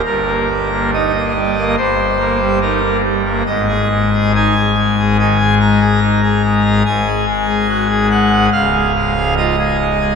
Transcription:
0.05 G1 G2 A#4
0.27 A#3
0.49 G3
0.71 A#3
0.94 D#4 D#5
1.14 A#3
1.36 G3
1.57 A#3
1.77 G1 G2 C5
1.99 G3
2.19 A#3
2.41 G3
2.61 D#4 A#4
2.83 A#3
3.04 G3
3.25 A#3
3.46 G#1 G#2 D#5
3.68 G#4
3.91 G#3
4.13 G#4
4.35 D#4 G#5
4.56 G#4
4.76 G#3
4.99 G#4
5.19 D#3 G#5
5.39 G#4
5.60 G#3 A#5
5.80 G#4
6.02 D#4
6.23 G#4
6.44 G#3
6.65 G#4
6.85 G#1 G#2 G#5
7.07 G#4
7.28 G#3
7.49 G#4
7.69 F#4
7.90 G#4
8.11 G#3 F#5
8.32 G#4
8.52 C#1 C#2 F5
8.74 G#4
8.95 G#3
9.16 G#4
9.37 F4 D#5
9.58 G#4
9.79 G#3
10.01 G#4

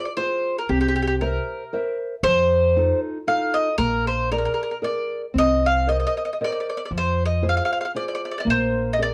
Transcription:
0.05 D5
0.17 F4 G#4 C5
0.58 A#4
0.69 C2 C4 G4
0.81 G4
0.88 G4
0.96 G4
1.02 G4
1.07 G4
1.21 A#4 C5 E5
1.73 A#4 C5 E5
2.23 F2 F3 C5
2.76 D#4 F4 A4
3.27 D#4 F4 A4 F5
3.54 D#5
3.78 A#1 A#3 A#4
4.07 C5
4.31 G#4 A#4 D5
4.38 A#4
4.45 A#4
4.54 A#4
4.63 A#4
4.71 A#4
4.82 G#4 A#4 D5
5.34 C2 C4
5.38 D#5
5.66 F5
5.87 A#4 C5 D#5
6.00 D#5
6.07 D#5
6.17 D#5
6.25 D#5
6.33 D#5
6.41 A#4 C5 D5 D#5
6.52 D5
6.60 D5
6.70 D5
6.77 D5
6.85 D5
6.91 F2 F3
6.98 C5
7.25 D#5
7.42 F4 G#4 C5
7.49 F5
7.57 F5
7.65 F5
7.72 F5
7.81 F5
7.85 F5
7.95 F4 G#4 C5 D5
8.08 D5
8.15 D5
8.25 D5
8.32 D5
8.38 D5
8.45 A#1 A#3
8.50 C5
8.93 D#5
8.99 G#4 A#4 D5

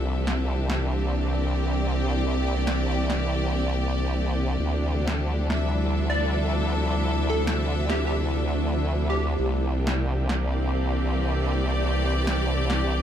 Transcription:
Already playing: C2 C3 E3 A#3 C4 D4 A4 E5
0.15 G4
0.27 snare
0.70 snare
0.99 D5
2.67 snare
3.10 snare
4.60 D2 C3 F3 G3 D4 E4
5.01 A4
5.08 snare
5.50 E5, snare
6.10 D5
7.00 A3
7.30 A4
7.47 snare
7.90 G4, snare
8.07 G4
9.10 G4
9.39 C2 E3 A#3 C4 D4
9.76 G4
9.87 snare
10.29 snare
10.42 D5
11.80 C4
12.27 snare
12.70 snare

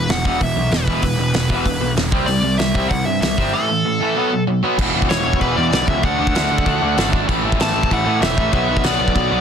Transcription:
0.09 E1 E2 B2 F#5, snare, open hi-hat
0.25 E2 B2 E3, kick
0.41 E1 E2 B2 E5, kick, open hi-hat
0.55 B1 E2 B2
0.71 E1 E2 B2 B4, snare, open hi-hat
0.87 E1 E2 B2 E3, kick
1.02 E1 E2 B2 B4, kick, open hi-hat
1.17 E1 E2 B2
1.34 E1 E2 B2, snare, open hi-hat
1.50 E2 B2 E3, kick
1.65 E1 E2 B2, kick, open hi-hat
1.79 B1 E2 B2
1.95 E1 E2 B2, snare, open hi-hat
2.12 C2 C3 G3 C4, kick
2.26 C2 C3 G3 D5, open hi-hat
2.42 C2 C3 G3
2.58 C2 C3 G3 E5, snare, open hi-hat
2.75 C3 G3 C4, kick
2.89 C2 C3 G3 F#5, kick, open hi-hat
3.05 G2 C3 G3 E5
3.21 C2 C3 G3 E5, snare, open hi-hat
3.37 G1 C3 G3 C4, kick
3.53 A2 E3 A3 A4
3.69 A2 E3
3.85 A2 E3
4.00 A2 E3 A3
4.16 B2 F#3 B3
4.32 B2 F#3
4.47 B2 F#3
4.63 B2 F#3 B3
4.78 E1 E2 B2 E3, kick, crash
4.94 E1 E2 B2 E3
5.02 kick
5.09 E1 E2 B2 E3 C#5, snare, crash
5.25 E1 E2 B2 E3
5.33 kick
5.40 E1 E2 B2 E3 B4, kick, crash
5.56 E2 B2 E3 D5
5.72 B1 E2 B2 E3, snare, crash
5.87 C#2 E2 B2 E3 E5, kick
6.03 D2 D3 A3 D4 F#5, kick, crash
6.19 D2 D3 A3 D4
6.27 kick
6.35 D2 D3 A3 D4, snare, crash
6.51 D2 D3 A3 D4
6.58 kick
6.65 D2 D3 A3 D4, kick, crash
6.82 D2 D3 A3 D4
6.97 G#1 D3 A3 D4, snare, crash
7.13 D3 A3 D4, kick
7.28 A1 A2 E3 A3, kick, crash
7.43 A1 A2 E3 A3
7.52 kick
7.60 A1 A2 E3 A3 A5, snare, crash
7.75 A1 A2 E3 A3
7.83 kick
7.90 A1 A2 E3 A3 F#5, kick, crash
8.06 A2 E3 A3
8.21 E1 A2 E3 A3 E5, snare, crash
8.36 A1 A2 E3 A3, kick
8.52 B1 B2 F#3 B3 E5, kick, crash
8.68 B1 B2 F#3 B3
8.77 kick
8.84 B1 B2 F#3 B3 D5, snare, crash
9.00 B1 B2 F#3 B3
9.08 kick
9.15 B1 B2 F#3 B3, kick, crash
9.31 B1 B2 F#3 B3

